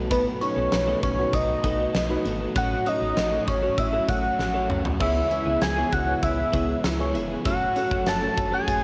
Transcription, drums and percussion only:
0.11 kick, closed hi-hat
0.41 closed hi-hat
0.72 snare, closed hi-hat, tambourine
1.03 kick, closed hi-hat
1.33 kick, closed hi-hat
1.64 kick, closed hi-hat
1.94 snare, closed hi-hat, tambourine
2.25 closed hi-hat
2.56 kick, closed hi-hat
2.86 closed hi-hat
3.17 snare, closed hi-hat, tambourine
3.48 kick, closed hi-hat
3.78 kick, closed hi-hat
4.09 kick, closed hi-hat
4.39 snare
4.70 mid tom
4.85 floor tom
5.00 kick, crash
5.31 closed hi-hat
5.61 snare, closed hi-hat, tambourine
5.92 kick, closed hi-hat
6.23 kick, closed hi-hat
6.53 kick, closed hi-hat
6.84 snare, closed hi-hat, tambourine
7.15 closed hi-hat
7.45 kick, closed hi-hat
7.76 closed hi-hat
7.91 kick
8.06 snare, closed hi-hat, tambourine
8.37 kick, closed hi-hat
8.68 kick, closed hi-hat

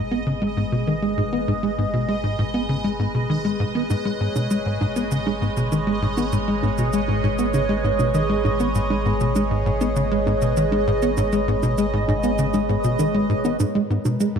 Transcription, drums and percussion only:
3.90 low bongo, cabasa
4.36 low bongo, cabasa
4.51 cabasa
4.81 low bongo
4.96 cabasa
5.11 cabasa
5.27 low bongo
5.57 cabasa
5.72 low bongo, cabasa
6.17 low bongo, cabasa
6.32 cabasa
6.63 low bongo
6.78 cabasa
6.93 cabasa
7.08 low bongo
7.39 cabasa
7.54 low bongo, cabasa
7.99 low bongo, cabasa
8.14 cabasa
8.45 low bongo
8.60 cabasa
8.75 cabasa
8.90 low bongo
9.20 cabasa
9.35 low bongo, cabasa
9.81 low bongo, cabasa
9.96 cabasa
10.26 low bongo
10.42 cabasa
10.57 cabasa
10.72 low bongo
11.02 cabasa
11.17 low bongo, cabasa
11.32 cabasa
11.63 low bongo, cabasa
11.78 cabasa
12.08 low bongo
12.23 cabasa
12.38 cabasa
12.54 low bongo, cabasa
12.84 cabasa
12.99 low bongo, cabasa
13.45 low bongo, cabasa
13.60 low bongo, cabasa
14.05 low bongo, cabasa
14.20 cabasa

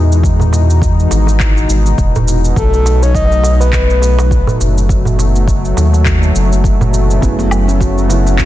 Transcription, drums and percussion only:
0.12 cabasa
0.23 kick, cabasa
0.40 darbuka ka, darbuka dum, cabasa
0.53 darbuka tek, cabasa
0.70 cabasa
0.82 kick, cabasa
1.00 cabasa
1.11 darbuka tek, cabasa
1.27 darbuka ka, cabasa
1.40 kick, clap, cabasa
1.57 cabasa
1.70 cabasa
1.86 cabasa
1.98 kick, cabasa
2.15 darbuka dum, cabasa
2.28 darbuka tek, cabasa
2.45 cabasa
2.56 kick, cabasa
2.73 darbuka ka, cabasa
2.86 darbuka tek, cabasa
3.03 cabasa
3.15 kick, cabasa
3.32 cabasa
3.44 darbuka tek, cabasa
3.61 darbuka ka, cabasa
3.73 kick, clap, cabasa
3.90 cabasa
4.02 darbuka ka, cabasa
4.19 darbuka tek, cabasa
4.31 kick, cabasa
4.47 darbuka dum, cabasa
4.61 darbuka ka, cabasa
4.78 cabasa
4.89 kick, cabasa
5.05 darbuka ka, darbuka dum, cabasa
5.19 darbuka tek, cabasa
5.36 cabasa
5.48 kick, cabasa
5.65 cabasa
5.77 darbuka tek, cabasa
5.93 darbuka ka, cabasa
6.06 kick, clap, cabasa
6.23 cabasa
6.35 cabasa
6.52 cabasa
6.64 kick, cabasa
6.81 darbuka ka, darbuka dum, cabasa
6.93 darbuka tek, cabasa
7.11 cabasa
7.22 kick, cabasa
7.39 darbuka ka, cabasa
7.51 darbuka tek, cabasa, low woodblock
7.69 cabasa
7.81 kick, cabasa
7.98 cabasa
8.10 darbuka tek, cabasa
8.27 darbuka ka, cabasa
8.39 kick, clap, cabasa

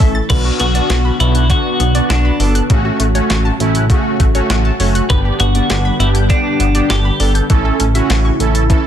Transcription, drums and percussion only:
0.00 kick, open hi-hat
0.30 kick, closed hi-hat, crash
0.60 closed hi-hat
0.75 closed hi-hat
0.90 snare, closed hi-hat
1.20 closed hi-hat
1.35 closed hi-hat
1.50 kick, closed hi-hat
1.80 closed hi-hat
1.95 closed hi-hat
2.10 snare, closed hi-hat
2.40 open hi-hat
2.55 closed hi-hat
2.70 kick, closed hi-hat
3.00 closed hi-hat
3.15 closed hi-hat
3.30 snare, closed hi-hat
3.60 closed hi-hat
3.75 closed hi-hat
3.90 kick, closed hi-hat
4.20 kick, closed hi-hat
4.35 closed hi-hat
4.50 snare, closed hi-hat
4.80 open hi-hat
4.95 closed hi-hat
5.10 kick, closed hi-hat
5.40 closed hi-hat
5.55 closed hi-hat
5.70 snare, closed hi-hat
6.00 closed hi-hat
6.15 closed hi-hat
6.30 kick, closed hi-hat
6.60 closed hi-hat
6.75 closed hi-hat
6.90 snare, closed hi-hat
7.20 open hi-hat
7.35 closed hi-hat
7.50 kick, closed hi-hat
7.80 closed hi-hat
7.95 closed hi-hat
8.10 snare, closed hi-hat
8.40 closed hi-hat
8.55 closed hi-hat
8.70 kick, closed hi-hat

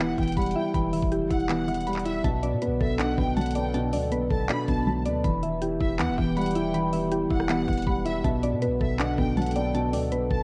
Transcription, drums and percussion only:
0.18 kick, closed hi-hat
0.23 closed hi-hat
0.27 closed hi-hat
0.32 closed hi-hat
0.37 kick, closed hi-hat
0.42 closed hi-hat
0.46 closed hi-hat
0.51 closed hi-hat
0.74 kick, closed hi-hat
0.93 open hi-hat
1.02 kick
1.12 closed hi-hat
1.31 kick, closed hi-hat
1.40 closed hi-hat
1.49 clap, closed hi-hat
1.68 closed hi-hat
1.74 closed hi-hat
1.81 closed hi-hat
1.87 closed hi-hat
1.93 clap, closed hi-hat
1.99 closed hi-hat
2.06 closed hi-hat
2.24 kick, closed hi-hat
2.43 closed hi-hat
2.62 closed hi-hat
2.81 kick
2.99 clap, closed hi-hat
3.18 kick
3.37 closed hi-hat
3.42 closed hi-hat
3.46 closed hi-hat
3.51 closed hi-hat
3.55 closed hi-hat
3.74 closed hi-hat
3.93 open hi-hat
4.12 closed hi-hat
4.31 kick
4.49 clap, closed hi-hat
4.68 kick, closed hi-hat
5.05 closed hi-hat
5.24 kick, closed hi-hat
5.43 closed hi-hat
5.62 closed hi-hat
5.81 kick
5.99 clap, closed hi-hat
6.18 kick
6.37 closed hi-hat
6.42 closed hi-hat
6.46 closed hi-hat
6.51 closed hi-hat
6.55 closed hi-hat
6.74 closed hi-hat
6.93 open hi-hat
7.12 closed hi-hat
7.31 kick
7.40 cross-stick
7.49 clap, closed hi-hat
7.68 kick, closed hi-hat
7.73 closed hi-hat
7.78 closed hi-hat
7.82 closed hi-hat
7.87 kick
8.06 closed hi-hat
8.24 kick, closed hi-hat
8.43 closed hi-hat
8.62 closed hi-hat
8.81 kick
8.99 clap, closed hi-hat
9.18 kick
9.37 closed hi-hat
9.42 closed hi-hat
9.46 closed hi-hat
9.51 closed hi-hat
9.56 closed hi-hat
9.74 closed hi-hat
9.93 open hi-hat
10.12 closed hi-hat
10.31 kick

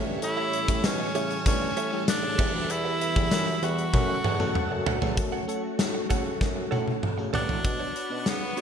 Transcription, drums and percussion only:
0.22 closed hi-hat
0.53 closed hi-hat
0.68 kick, closed hi-hat
0.84 snare, closed hi-hat, tambourine
1.15 closed hi-hat
1.31 closed hi-hat
1.46 kick, closed hi-hat
1.77 closed hi-hat
2.08 snare, closed hi-hat, tambourine
2.39 kick, crash
2.70 closed hi-hat
3.01 closed hi-hat
3.16 kick
3.31 snare, closed hi-hat, tambourine
3.63 closed hi-hat
3.78 closed hi-hat
3.93 kick, high tom
4.24 mid tom
4.40 mid tom
4.55 mid tom
4.87 floor tom
5.02 floor tom
5.17 kick, closed hi-hat
5.49 closed hi-hat
5.79 snare, closed hi-hat
6.10 kick, closed hi-hat
6.41 kick, snare
6.72 high tom
6.87 high tom
7.03 mid tom
7.34 floor tom
7.49 floor tom
7.65 kick, closed hi-hat
7.96 closed hi-hat
8.26 snare, closed hi-hat
8.57 closed hi-hat

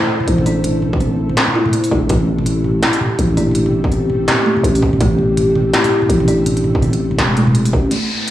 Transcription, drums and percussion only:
0.02 mid tom
0.20 mid tom
0.28 closed hi-hat
0.38 mid tom
0.46 open hi-hat
0.64 closed hi-hat, mid tom
0.82 mid tom
0.93 kick
1.00 mid tom, open hi-hat
1.29 mid tom
1.37 snare, closed hi-hat
1.48 mid tom
1.66 mid tom
1.73 closed hi-hat
1.84 open hi-hat
1.91 kick, mid tom
2.09 kick, closed hi-hat
2.20 mid tom
2.39 mid tom
2.46 closed hi-hat
2.64 mid tom
2.83 snare, closed hi-hat, mid tom
2.93 open hi-hat
3.01 mid tom
3.19 closed hi-hat
3.30 mid tom
3.35 mid tom
3.37 mid tom, open hi-hat
3.41 mid tom
3.43 mid tom
3.51 closed hi-hat, mid tom
3.66 mid tom
3.84 kick
3.92 mid tom, open hi-hat
4.10 mid tom
4.28 snare, closed hi-hat, mid tom
4.57 mid tom
4.64 closed hi-hat
4.75 mid tom, open hi-hat
4.83 kick
4.93 mid tom
5.01 kick, closed hi-hat
5.19 mid tom
5.37 closed hi-hat, mid tom
5.55 mid tom
5.73 snare, closed hi-hat
5.84 mid tom, open hi-hat
6.02 mid tom
6.10 closed hi-hat
6.20 mid tom
6.28 open hi-hat
6.46 closed hi-hat, mid tom
6.57 closed hi-hat
6.64 mid tom
6.75 kick
6.82 mid tom, open hi-hat
6.93 closed hi-hat
7.11 mid tom
7.19 snare, closed hi-hat
7.29 mid tom
7.37 closed hi-hat
7.47 mid tom
7.55 closed hi-hat
7.65 open hi-hat
7.73 kick, mid tom
7.91 closed hi-hat

